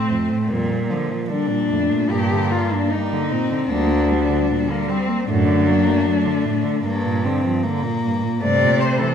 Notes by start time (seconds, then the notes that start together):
Already playing: A2 A3 C4
0.09 F2
0.31 A2
0.47 A#2 G3
0.51 F2
0.69 A#2
0.90 D3 F3
1.11 F3
1.29 D3 G3 D4
1.49 A#2
1.70 F2 A3
1.91 A#2
2.10 G2 A#2 A#3 G4
2.32 D3
2.51 G3 F4
2.73 A#3 D4
2.90 A#3 D#4
2.95 G3
3.13 D3
3.30 A#2 C4
3.51 D3
3.69 D2 G3 A#3 D4
3.88 A#3
4.08 G3
4.30 D3
4.51 A#2
4.68 D3 A#3
4.88 G3 C4
5.07 A#3
5.27 F#2 A2 A3 D4
5.46 D3
5.68 F#3 A#3
5.87 A3
6.06 F#3 A3
6.26 D3
6.45 A2
6.64 D3
6.83 G2 A#3
7.04 A#2
7.24 D3 C4
7.44 F3
7.63 D3 A#3
7.84 A#2
8.05 G2
8.23 A#2
8.41 G2 C3 A3 D5
8.63 A#2
8.79 C3 C5
9.00 E3 A4